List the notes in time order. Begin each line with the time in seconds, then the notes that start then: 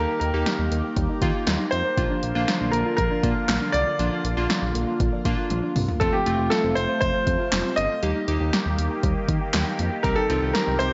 Already playing: D#3 A#3 D#4 G4 A#4
0.09 D#4
0.20 D#2 A#3 A#4, closed hi-hat
0.34 D#2 A#3 D#4 G4
0.46 G3, snare, closed hi-hat
0.59 D#2 D#4
0.71 D#2 A#3, closed hi-hat
0.84 G4
0.96 D#2 G3, kick, closed hi-hat
1.09 D#4
1.22 D#3 A#3 D#4 F4, kick, closed hi-hat
1.35 G4
1.47 D#2 G3, snare, closed hi-hat
1.60 D#4
1.71 F2 C5, closed hi-hat
1.85 G4
1.97 A#1 D3 F3 A#3 D4 F4, kick, closed hi-hat
2.10 D4
2.23 A#1 A#3, closed hi-hat
2.35 A#1 A#3 D4 F4
2.48 F3, snare, closed hi-hat
2.61 A#1 D4
2.71 A#1 A#3 A#4, closed hi-hat
2.86 F4
2.97 A#1 F3 A#4, kick, closed hi-hat
3.11 D4
3.23 A#2 A#3 D4 F4, kick, closed hi-hat
3.36 F4
3.49 A#1 F3, snare, clap, closed hi-hat
3.62 D4
3.72 C2 D5, closed hi-hat
3.87 F4
3.99 A#1 F3 A#3 D4 F4, closed hi-hat
4.12 D4
4.24 A#1 A#3, closed hi-hat
4.37 A#1 A#3 D4 F4
4.50 F3, snare, closed hi-hat
4.62 A#1 D4
4.75 A#1 A#3, closed hi-hat
4.88 F4
5.00 A#1 F3, kick, closed hi-hat
5.13 D4
5.25 A#2 A#3 D4 F4, kick, closed hi-hat
5.38 F4
5.50 A#1 F3, closed hi-hat, high tom
5.63 D4
5.76 C2, mid tom, open hi-hat
5.88 F4, floor tom
6.00 F1 C3 F3 A3 C4 F4 A4, kick, closed hi-hat
6.13 C4 G4
6.26 F1 A3 C4 F4, closed hi-hat
6.39 F1 F4
6.50 F3 A4, snare, closed hi-hat
6.64 F1 C4
6.75 F1 A3 C5, closed hi-hat
6.89 F4
7.01 F1 F3 C5, kick, closed hi-hat
7.27 F2 A3, kick, closed hi-hat
7.40 F4
7.52 F1, snare, clap, closed hi-hat
7.65 C4
7.76 G1 A3 D#5, closed hi-hat
7.90 F4
8.03 D#2 D#3 G3 A#3 D#4 G4, closed hi-hat
8.15 D#4
8.28 D#2 A#3 D#4 G4, closed hi-hat
8.40 D#2 G4
8.53 G3, snare, closed hi-hat
8.66 D#2 D#4
8.78 D#2 A#3, closed hi-hat
8.91 G4
9.03 D#2 G3, kick, closed hi-hat
9.28 D#3 A#3, kick, closed hi-hat
9.41 G4
9.54 D#2, snare, clap, closed hi-hat
9.67 D#4
9.79 F2 A#3, closed hi-hat
9.92 G4
10.03 C2 G3 C4 D#4 G4 A#4, kick, closed hi-hat
10.16 D#4 A4
10.29 C2 C4 D#4 F4, closed hi-hat
10.42 C2 G4
10.53 G3 A#4, snare, closed hi-hat
10.67 C2 D#4
10.79 C2 C4 C5, closed hi-hat